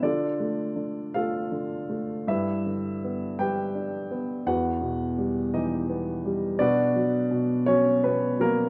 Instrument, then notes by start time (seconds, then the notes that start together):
upright piano
0.02 D3 D4 F4 A4 D5
0.40 A3
0.76 D3
1.14 A3 F4 A4 F5
1.52 D3
1.90 A3
2.27 G2 E4 G4 B4 E5
2.66 D3
3.04 B3
3.39 G3 G4 B4 G5
3.75 D4
4.11 B3
4.46 E2 F#4 B4 F#5
4.82 B2
5.18 G3
5.54 E3 D#4 G4 D#5
5.89 B3
6.25 G3
6.59 B2 D4 F#4 B4 D5
6.96 F#3
7.31 B2
7.66 F#3 C#4 C#5
8.03 B2 B3 B4
8.40 F#3 A#3 A#4